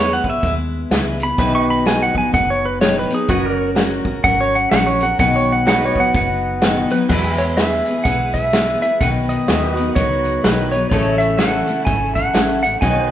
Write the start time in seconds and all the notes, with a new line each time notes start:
Already playing: E2 E3 G#3 B3 E4 G#4 B4 C#5 E5
0.13 F#5
0.24 B3 E4 B4, kick
0.30 E5
0.43 D#2 G#3 B3 E4 B4, kick, closed hi-hat
0.91 C#2 E3 G#3 B3 E4 B4, snare, closed hi-hat
1.19 B3 E4 B4, closed hi-hat
1.23 B5
1.38 B1 B2 D#3 F#3 B3 D#4 G#4 B4 E5, kick, closed hi-hat
1.55 C#6
1.60 F#4 D#5
1.70 B5
1.85 B2 D#3 F#3 B3 D#4 B4 G#5, snare, closed hi-hat
2.02 F#5
2.14 F#3 B3 D#4 B4, kick
2.18 G#5
2.31 F#1 F#3 B3 D#4 B4 F#5, kick, closed hi-hat
2.50 C#5
2.66 B4
2.81 B2 D#3 F#3 B3 D#4 B4 C#5, snare, closed hi-hat
2.99 B4
3.09 F#3 B3 D#4 B4, closed hi-hat
3.14 G#4
3.28 F#1 F#3 C#4 F#4 A#4 B4 D#5, kick, closed hi-hat
3.46 A#4
3.56 C#5
3.75 F#3 C#4 F#4 A#4, snare, closed hi-hat
4.05 C#4 F#4 A#4, kick
4.24 G#1 F#3 C#4 F#4 A#4 F#5, kick, closed hi-hat
4.41 C#5
4.55 F#5
4.71 A#1 F#3 C#4 F#4 A#4 F#5, snare, closed hi-hat
4.87 C#5
5.00 C#4 F#4 A#4 F#5, closed hi-hat
5.19 B1 B2 D#3 F#3 B3 D#4 B4 F#5, kick, closed hi-hat
5.36 C#5
5.52 F#5
5.67 B2 D#3 F#3 B3 D#4 F#4 B4 C#5 F#5, snare, closed hi-hat
5.85 C#5
5.94 D#4 B4 D#5, kick
5.98 F#3 B3 F#5
6.14 F#1 F#3 B3 D#4 B4 F#5, kick, closed hi-hat
6.62 B2 D#3 F#3 B3 D#4 B4, snare, closed hi-hat
6.91 F#3 B3 D#4 B4, closed hi-hat
7.09 E2 E3 G#3 B3 E4 F#4 G#4 B4 E5, kick, crash
7.34 G#4
7.38 C#5, closed hi-hat
7.57 E3 G#3 B3 E4 B4 E5, snare, closed hi-hat
7.86 E4 B4, closed hi-hat
7.90 B3
8.04 B1 G#3 B3 F#5, kick, closed hi-hat
8.08 E4 B4
8.34 E5, kick, closed hi-hat
8.53 E3 G#3 B3 E4 B4, snare, closed hi-hat
8.82 B3 E4 B4 E5, closed hi-hat
9.01 B1 B2 D#3 F#3 B3 D#4 F#4 B4 F#5, kick, closed hi-hat
9.29 D#5, closed hi-hat
9.48 D#2 B2 D#3 F#3 B3 D#4 G#4 B4 E5, snare, closed hi-hat
9.72 F#4 D#5
9.77 F#3 B3 D#4 B4, closed hi-hat
9.95 C#2 F#3 B3 D#4 B4 C#5, kick, closed hi-hat
10.25 closed hi-hat
10.44 B1 B2 D#3 F#3 B3 D#4 B4, snare, closed hi-hat
10.72 F#3 B3 D#4 B4 C#5, closed hi-hat
10.90 A1 A2 C#3 E3 A3 C#4 E4 A4 C#5, kick, closed hi-hat
10.94 D#5
11.14 E5
11.18 E5, closed hi-hat
11.37 A2 E3 A3 C#4 E4 A4 F#5, snare, closed hi-hat
11.67 A3 C#4 E4 A4, closed hi-hat
11.85 G#1 A3 C#4 E4 A4 G#5, kick, closed hi-hat
12.15 F#5, kick, closed hi-hat
12.33 A1 A2 E3 A3 C#4 E4 A4, snare, closed hi-hat
12.63 A3 C#4 E4 A4 F#5, closed hi-hat
12.81 B1 B2 D#3 F#3 B3 D#4 F#4 B4 C#5 D#5 G#5, kick, closed hi-hat
13.09 B4